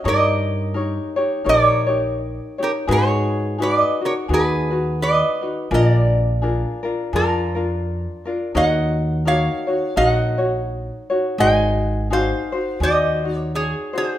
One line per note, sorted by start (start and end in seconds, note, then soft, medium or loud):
0.04 0.97 G2 loud
0.04 0.75 D#4 medium
0.04 0.75 G4 medium
0.04 0.73 A#4 medium
0.04 1.44 A#4 medium
0.04 0.75 C#5 medium
0.09 1.49 D#5 medium
0.74 1.17 D#4 medium
0.74 1.16 G4 medium
0.74 1.17 A#4 medium
0.74 1.15 C#5 medium
1.16 1.44 D#4 soft
1.16 1.44 G4 medium
1.16 1.45 C#5 medium
1.44 2.38 A#1 medium
1.44 1.87 D#4 medium
1.44 1.87 G4 medium
1.44 1.87 A#4 medium
1.44 1.85 C#5 medium
1.49 2.56 A#4 medium
1.49 1.66 D5 loud
1.66 2.64 C#5 loud
1.87 2.60 D#4 soft
1.87 2.58 G4 soft
1.87 2.57 C#5 medium
2.58 2.87 D#4 soft
2.58 2.88 G4 soft
2.58 2.87 C#5 soft
2.63 2.70 G4 medium
2.63 2.71 A#4 medium
2.87 3.80 G#2 loud
2.87 3.58 D#4 medium
2.87 3.59 F#4 medium
2.87 3.58 G#4 medium
2.87 3.56 G#4 medium
2.87 3.59 B4 medium
2.92 3.63 C#5 medium
3.58 4.01 D#4 medium
3.58 4.00 F#4 medium
3.58 4.00 G#4 medium
3.58 4.02 B4 medium
3.58 3.99 B4 medium
3.63 4.04 D#5 medium
4.01 4.28 D#4 soft
4.01 4.29 F#4 soft
4.01 4.12 A#4 medium
4.06 4.13 C#5 medium
4.28 5.21 D#2 medium
4.28 4.71 D#4 medium
4.28 4.71 F#4 medium
4.28 4.71 G#4 medium
4.28 4.69 B4 medium
4.33 4.98 G#4 medium
4.33 5.01 B4 medium
4.70 5.42 D#4 soft
4.70 5.41 F#4 soft
4.70 5.40 B4 medium
5.02 5.68 B4 medium
5.02 5.75 D#5 medium
5.41 5.71 D#4 soft
5.41 5.71 F#4 soft
5.41 5.71 B4 soft
5.71 6.63 A#1 loud
5.71 6.41 D4 medium
5.71 6.42 F4 medium
5.71 6.41 G#4 medium
5.71 6.43 A#4 medium
5.71 7.11 A#4 medium
5.71 5.86 D#5 medium
5.86 7.19 D5 medium
6.42 6.84 D4 medium
6.42 6.83 F4 medium
6.42 6.84 G#4 medium
6.42 6.82 A#4 medium
6.83 7.13 D4 soft
6.83 7.13 F4 medium
6.83 7.12 A#4 medium
7.13 8.05 F2 medium
7.13 7.55 D4 medium
7.13 7.55 F4 medium
7.13 8.23 F4 medium
7.13 7.55 G#4 medium
7.13 7.54 A#4 medium
7.13 8.23 A#4 medium
7.55 8.26 D4 soft
7.55 8.25 F4 soft
7.55 8.25 A#4 soft
8.25 8.54 D4 soft
8.25 8.55 F4 soft
8.25 8.53 A#4 medium
8.55 9.47 D#2 loud
8.55 9.26 D#4 medium
8.55 9.27 F#4 medium
8.55 9.24 A#4 medium
8.55 9.26 C#5 medium
8.55 9.23 D#5 medium
8.55 9.28 F#5 medium
9.25 9.68 D#4 medium
9.25 9.67 F#4 medium
9.25 9.68 A#4 medium
9.25 9.66 C#5 medium
9.25 9.94 C#5 medium
9.25 9.94 F5 loud
9.67 9.95 D#4 soft
9.67 9.96 F#4 soft
9.67 9.96 C#5 soft
9.96 10.89 A#1 medium
9.96 10.39 D#4 medium
9.96 10.37 F#4 medium
9.96 10.38 A#4 medium
9.96 10.37 C#5 medium
9.96 11.35 D#5 medium
9.96 10.08 F5 loud
10.08 11.40 F#5 loud
10.38 11.11 D#4 soft
10.38 11.10 F#4 soft
10.38 11.09 C#5 medium
11.10 11.38 D#4 soft
11.10 11.39 F#4 soft
11.10 11.39 C#5 medium
11.38 12.31 G#1 loud
11.38 12.10 D#4 medium
11.38 12.10 F#4 medium
11.38 12.10 G#4 medium
11.38 12.11 C5 medium
11.38 12.07 D#5 medium
11.38 12.06 G#5 loud
12.10 12.52 D#4 medium
12.10 12.52 F#4 medium
12.10 12.52 G#4 medium
12.10 12.51 C5 medium
12.10 12.78 C5 medium
12.10 12.83 F5 medium
12.52 12.80 D#4 soft
12.52 12.81 F#4 soft
12.52 12.81 C5 soft
12.80 13.73 D#2 medium
12.80 13.23 D#4 medium
12.80 13.23 F#4 medium
12.80 13.23 G#4 medium
12.80 13.24 C5 medium
12.80 13.36 D#5 medium
12.84 13.50 C5 medium
13.24 13.94 D#4 soft
13.24 13.93 F#4 soft
13.36 13.55 C#5 medium
13.55 13.93 G#4 medium
13.55 13.97 C#5 medium
13.93 14.18 D#4 soft
13.93 14.18 F#4 soft
13.93 14.18 C5 soft
13.98 14.18 G#4 medium
13.98 14.18 C5 medium